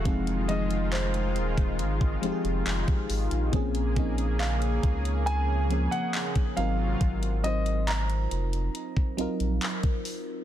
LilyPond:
<<
  \new Staff \with { instrumentName = "Grand piano" } { \time 4/4 \key bes \minor \tempo 4 = 69 f''8 ees''8 c''2~ c''8 r8 | r4 f''4 aes''8. ges''8. f''8~ | f''8 ees''8 bes''2~ bes''8 r8 | }
  \new Staff \with { instrumentName = "FM electric piano" } { \time 4/4 \key bes \minor <f aes c' ees' aes'>8 <f aes c' ees' aes'>4. r8 <f aes c' ees' g' aes'>4 r8 | <f bes c' des' aes'>8 <f bes c' des' ees'>4. r8 <f bes c' des' aes'>4 <ges c' ees' f' bes'>8~ | <ges c' ees' f' bes'>8 <ges c' ees' f' c''>4. r8 <ges c' ees' f' bes'>4 r8 | }
  \new Staff \with { instrumentName = "Analog synth pad" } { \clef bass \time 4/4 \key bes \minor << { <ees f'>1 | <des aes'>2.~ <des aes'>8 <c ges f'>8 | r1 | } \\ { aes1 | bes1 | r1 | } >> }
  \new Staff \with { instrumentName = "Sub bass" } { \clef bass \time 4/4 \key bes \minor f,,4. ees,,8 aes,,8 f,,16 f,,16 f,,16 r16 aes,,16 bes,,16 | bes,,4. des,4~ des,16 r8. aes,,8 | aes,,4. f,,8 r8 bes,,16 bes,,16 r4 | }
  \new DrumStaff \with { instrumentName = "Drums" } \drummode { \time 4/4 <hh bd>16 hh16 hh16 hh16 <hc hh>16 hh16 hh16 <hh bd>16 hh16 bd16 hh16 hh16 <hc hh>16 <hh bd>16 <hh hho>16 hh16 | <hh bd>16 hh16 <hh bd>16 hh16 <hc hh>16 hh16 <hh bd>16 hh16 hh8 hh16 hh16 <hc hh>16 <hh bd>16 hh8 | <hh bd>16 hh16 hh16 hh16 <hc hh>16 hh16 hh16 hh16 hh16 bd16 hh16 hh16 <hc hh>16 <hh bd>16 hho8 | }
>>